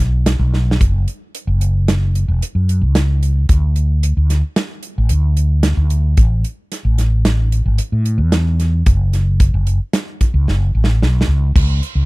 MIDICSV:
0, 0, Header, 1, 3, 480
1, 0, Start_track
1, 0, Key_signature, 3, "minor"
1, 0, Tempo, 537153
1, 717, Time_signature, 5, 2, 24, 8
1, 10771, End_track
2, 0, Start_track
2, 0, Title_t, "Fretless electric bass"
2, 0, Program_c, 0, 35
2, 0, Note_on_c, 0, 35, 93
2, 319, Note_off_c, 0, 35, 0
2, 352, Note_on_c, 0, 35, 93
2, 680, Note_off_c, 0, 35, 0
2, 721, Note_on_c, 0, 30, 86
2, 937, Note_off_c, 0, 30, 0
2, 1317, Note_on_c, 0, 30, 92
2, 2003, Note_off_c, 0, 30, 0
2, 2041, Note_on_c, 0, 28, 81
2, 2149, Note_off_c, 0, 28, 0
2, 2278, Note_on_c, 0, 42, 69
2, 2515, Note_on_c, 0, 37, 78
2, 2529, Note_off_c, 0, 42, 0
2, 3083, Note_off_c, 0, 37, 0
2, 3123, Note_on_c, 0, 38, 93
2, 3687, Note_off_c, 0, 38, 0
2, 3725, Note_on_c, 0, 38, 81
2, 3941, Note_off_c, 0, 38, 0
2, 4450, Note_on_c, 0, 33, 86
2, 4555, Note_off_c, 0, 33, 0
2, 4562, Note_on_c, 0, 38, 92
2, 5127, Note_off_c, 0, 38, 0
2, 5158, Note_on_c, 0, 38, 99
2, 5485, Note_off_c, 0, 38, 0
2, 5520, Note_on_c, 0, 33, 95
2, 5738, Note_off_c, 0, 33, 0
2, 6119, Note_on_c, 0, 33, 91
2, 6805, Note_off_c, 0, 33, 0
2, 6842, Note_on_c, 0, 32, 85
2, 6950, Note_off_c, 0, 32, 0
2, 7080, Note_on_c, 0, 45, 72
2, 7308, Note_on_c, 0, 40, 83
2, 7321, Note_off_c, 0, 45, 0
2, 7878, Note_off_c, 0, 40, 0
2, 7920, Note_on_c, 0, 30, 97
2, 8484, Note_off_c, 0, 30, 0
2, 8524, Note_on_c, 0, 30, 87
2, 8739, Note_off_c, 0, 30, 0
2, 9239, Note_on_c, 0, 37, 87
2, 9348, Note_off_c, 0, 37, 0
2, 9361, Note_on_c, 0, 30, 95
2, 9577, Note_off_c, 0, 30, 0
2, 9605, Note_on_c, 0, 33, 81
2, 9818, Note_off_c, 0, 33, 0
2, 9848, Note_on_c, 0, 35, 89
2, 10060, Note_off_c, 0, 35, 0
2, 10077, Note_on_c, 0, 37, 84
2, 10294, Note_off_c, 0, 37, 0
2, 10327, Note_on_c, 0, 37, 101
2, 10540, Note_off_c, 0, 37, 0
2, 10682, Note_on_c, 0, 37, 82
2, 10771, Note_off_c, 0, 37, 0
2, 10771, End_track
3, 0, Start_track
3, 0, Title_t, "Drums"
3, 0, Note_on_c, 9, 36, 64
3, 0, Note_on_c, 9, 42, 54
3, 87, Note_off_c, 9, 36, 0
3, 88, Note_off_c, 9, 42, 0
3, 235, Note_on_c, 9, 38, 108
3, 235, Note_on_c, 9, 42, 83
3, 324, Note_off_c, 9, 38, 0
3, 324, Note_off_c, 9, 42, 0
3, 479, Note_on_c, 9, 38, 57
3, 569, Note_off_c, 9, 38, 0
3, 637, Note_on_c, 9, 38, 81
3, 722, Note_on_c, 9, 36, 105
3, 723, Note_on_c, 9, 42, 80
3, 727, Note_off_c, 9, 38, 0
3, 811, Note_off_c, 9, 36, 0
3, 812, Note_off_c, 9, 42, 0
3, 962, Note_on_c, 9, 42, 55
3, 1051, Note_off_c, 9, 42, 0
3, 1203, Note_on_c, 9, 42, 76
3, 1292, Note_off_c, 9, 42, 0
3, 1439, Note_on_c, 9, 42, 58
3, 1529, Note_off_c, 9, 42, 0
3, 1683, Note_on_c, 9, 38, 98
3, 1683, Note_on_c, 9, 42, 77
3, 1773, Note_off_c, 9, 38, 0
3, 1773, Note_off_c, 9, 42, 0
3, 1925, Note_on_c, 9, 42, 57
3, 2014, Note_off_c, 9, 42, 0
3, 2166, Note_on_c, 9, 42, 76
3, 2255, Note_off_c, 9, 42, 0
3, 2404, Note_on_c, 9, 42, 52
3, 2493, Note_off_c, 9, 42, 0
3, 2637, Note_on_c, 9, 38, 107
3, 2637, Note_on_c, 9, 42, 72
3, 2727, Note_off_c, 9, 38, 0
3, 2727, Note_off_c, 9, 42, 0
3, 2883, Note_on_c, 9, 42, 62
3, 2973, Note_off_c, 9, 42, 0
3, 3119, Note_on_c, 9, 42, 83
3, 3121, Note_on_c, 9, 36, 97
3, 3209, Note_off_c, 9, 42, 0
3, 3211, Note_off_c, 9, 36, 0
3, 3358, Note_on_c, 9, 42, 59
3, 3448, Note_off_c, 9, 42, 0
3, 3603, Note_on_c, 9, 42, 83
3, 3693, Note_off_c, 9, 42, 0
3, 3843, Note_on_c, 9, 38, 33
3, 3843, Note_on_c, 9, 42, 61
3, 3932, Note_off_c, 9, 38, 0
3, 3932, Note_off_c, 9, 42, 0
3, 4077, Note_on_c, 9, 38, 104
3, 4077, Note_on_c, 9, 42, 82
3, 4167, Note_off_c, 9, 38, 0
3, 4167, Note_off_c, 9, 42, 0
3, 4313, Note_on_c, 9, 42, 67
3, 4402, Note_off_c, 9, 42, 0
3, 4550, Note_on_c, 9, 42, 85
3, 4640, Note_off_c, 9, 42, 0
3, 4796, Note_on_c, 9, 42, 57
3, 4885, Note_off_c, 9, 42, 0
3, 5032, Note_on_c, 9, 38, 103
3, 5032, Note_on_c, 9, 42, 83
3, 5121, Note_off_c, 9, 38, 0
3, 5121, Note_off_c, 9, 42, 0
3, 5275, Note_on_c, 9, 42, 64
3, 5364, Note_off_c, 9, 42, 0
3, 5516, Note_on_c, 9, 42, 82
3, 5519, Note_on_c, 9, 36, 102
3, 5605, Note_off_c, 9, 42, 0
3, 5608, Note_off_c, 9, 36, 0
3, 5759, Note_on_c, 9, 42, 54
3, 5848, Note_off_c, 9, 42, 0
3, 6002, Note_on_c, 9, 38, 34
3, 6002, Note_on_c, 9, 42, 76
3, 6091, Note_off_c, 9, 38, 0
3, 6091, Note_off_c, 9, 42, 0
3, 6240, Note_on_c, 9, 38, 32
3, 6240, Note_on_c, 9, 42, 58
3, 6330, Note_off_c, 9, 38, 0
3, 6330, Note_off_c, 9, 42, 0
3, 6479, Note_on_c, 9, 38, 106
3, 6479, Note_on_c, 9, 42, 71
3, 6568, Note_off_c, 9, 38, 0
3, 6568, Note_off_c, 9, 42, 0
3, 6722, Note_on_c, 9, 42, 64
3, 6811, Note_off_c, 9, 42, 0
3, 6956, Note_on_c, 9, 42, 75
3, 7045, Note_off_c, 9, 42, 0
3, 7198, Note_on_c, 9, 42, 53
3, 7287, Note_off_c, 9, 42, 0
3, 7436, Note_on_c, 9, 38, 107
3, 7436, Note_on_c, 9, 42, 78
3, 7525, Note_off_c, 9, 38, 0
3, 7525, Note_off_c, 9, 42, 0
3, 7682, Note_on_c, 9, 38, 36
3, 7682, Note_on_c, 9, 42, 65
3, 7771, Note_off_c, 9, 38, 0
3, 7771, Note_off_c, 9, 42, 0
3, 7919, Note_on_c, 9, 42, 85
3, 7921, Note_on_c, 9, 36, 111
3, 8009, Note_off_c, 9, 42, 0
3, 8011, Note_off_c, 9, 36, 0
3, 8162, Note_on_c, 9, 38, 33
3, 8162, Note_on_c, 9, 42, 65
3, 8251, Note_off_c, 9, 38, 0
3, 8251, Note_off_c, 9, 42, 0
3, 8399, Note_on_c, 9, 42, 84
3, 8400, Note_on_c, 9, 36, 100
3, 8489, Note_off_c, 9, 42, 0
3, 8490, Note_off_c, 9, 36, 0
3, 8639, Note_on_c, 9, 42, 63
3, 8728, Note_off_c, 9, 42, 0
3, 8877, Note_on_c, 9, 38, 108
3, 8877, Note_on_c, 9, 42, 86
3, 8966, Note_off_c, 9, 38, 0
3, 8966, Note_off_c, 9, 42, 0
3, 9122, Note_on_c, 9, 36, 79
3, 9122, Note_on_c, 9, 42, 69
3, 9211, Note_off_c, 9, 36, 0
3, 9211, Note_off_c, 9, 42, 0
3, 9367, Note_on_c, 9, 38, 58
3, 9456, Note_off_c, 9, 38, 0
3, 9686, Note_on_c, 9, 38, 69
3, 9775, Note_off_c, 9, 38, 0
3, 9852, Note_on_c, 9, 38, 74
3, 9941, Note_off_c, 9, 38, 0
3, 10015, Note_on_c, 9, 38, 86
3, 10105, Note_off_c, 9, 38, 0
3, 10327, Note_on_c, 9, 36, 109
3, 10331, Note_on_c, 9, 49, 91
3, 10416, Note_off_c, 9, 36, 0
3, 10421, Note_off_c, 9, 49, 0
3, 10570, Note_on_c, 9, 42, 55
3, 10659, Note_off_c, 9, 42, 0
3, 10771, End_track
0, 0, End_of_file